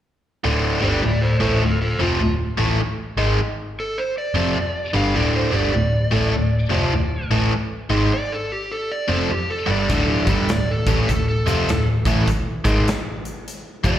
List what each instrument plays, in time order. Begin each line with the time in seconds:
0.44 picked electric bass D1, overdriven electric guitar D2 A2 D3
0.80 picked electric bass G1, overdriven electric guitar G2 D3 G3, electric slide guitar F4 D5
1.02 picked electric bass D1, overdriven electric guitar D2 A2, electric slide guitar F4 D5
1.21 electric slide guitar A4 C5
1.40 picked electric bass A1, overdriven electric guitar A2 E3 A3, electric slide guitar A4 C5
1.61 picked electric bass D1, overdriven electric guitar D2 A2, electric slide guitar F4 A4
1.82 electric slide guitar F4 A4
1.98 picked electric bass F1, overdriven electric guitar F2 C3 F3, electric slide guitar F4
2.20 picked electric bass D1, overdriven electric guitar D2 A2
2.57 picked electric bass A1, overdriven electric guitar A2 E3 A3
2.80 muted picked electric bass stroke, muted overdriven electric guitar stroke
3.16 picked electric bass G#1, overdriven electric guitar G#2 D#3 G#3
3.80 electric slide guitar A4
3.98 electric slide guitar C5
4.18 electric slide guitar D5
4.34 picked electric bass F1, overdriven electric guitar F2 C3 F3
4.57 muted picked electric bass stroke, muted overdriven electric guitar stroke
4.93 picked electric bass G1, overdriven electric guitar G2 D3 G3, electric slide guitar F5
5.15 picked electric bass D1, overdriven electric guitar D2 A2 D3, electric slide guitar D5
5.36 electric slide guitar C5
5.51 picked electric bass G1, overdriven electric guitar G2 D3 G3, electric slide guitar D5
5.74 picked electric bass D1, overdriven electric guitar D2 A2
6.11 picked electric bass A1, overdriven electric guitar A2 E3 A3
6.33 picked electric bass D1, overdriven electric guitar D2 A2
6.69 picked electric bass F1, overdriven electric guitar F2 C3 F3
6.93 picked electric bass D1, overdriven electric guitar D2 A2
7.30 picked electric bass A1, overdriven electric guitar A2 E3 A3
7.52 muted overdriven electric guitar stroke, muted picked electric bass stroke
7.90 picked electric bass G#1, overdriven electric guitar G#2 D#3 G#3
8.14 electric slide guitar D5
8.32 electric slide guitar A4
8.52 electric slide guitar G4
8.72 electric slide guitar A4
8.92 electric slide guitar D5
9.08 picked electric bass F1, overdriven electric guitar F2 C3 F3, electric slide guitar A4
9.30 electric slide guitar G4, muted overdriven electric guitar stroke, muted picked electric bass stroke
9.50 electric slide guitar A4
9.66 picked electric bass G1, overdriven electric guitar G2 D3 G3
9.71 electric slide guitar D5
9.89 picked electric bass D1, overdriven electric guitar D2 A2 D3, electric slide guitar A4, kick, closed hi-hat
10.10 electric slide guitar G4
10.27 picked electric bass G1, overdriven electric guitar G2 D3 G3, electric slide guitar A4, kick, closed hi-hat
10.49 picked electric bass D1, overdriven electric guitar D2 A2, electric slide guitar D5, snare, closed hi-hat
10.71 electric slide guitar A4
10.87 picked electric bass A1, overdriven electric guitar A2 E3 A3, electric slide guitar G4, kick, closed hi-hat
11.09 picked electric bass D1, overdriven electric guitar D2 A2, electric slide guitar A4, kick, closed hi-hat
11.29 electric slide guitar A4
11.45 picked electric bass F1, overdriven electric guitar F2 C3 F3, closed hi-hat
11.68 picked electric bass D1, overdriven electric guitar D2 A2, snare, closed hi-hat
12.05 picked electric bass A1, overdriven electric guitar A2 E3 A3, kick, closed hi-hat
12.27 muted picked electric bass stroke, muted overdriven electric guitar stroke, kick, closed hi-hat
12.64 picked electric bass G#1, overdriven electric guitar G#2 D#3 G#3, kick, closed hi-hat
12.88 snare, closed hi-hat
13.25 closed hi-hat
13.48 closed hi-hat
13.84 picked electric bass F1, overdriven electric guitar F2 C3 F3, electric slide guitar D5, kick, closed hi-hat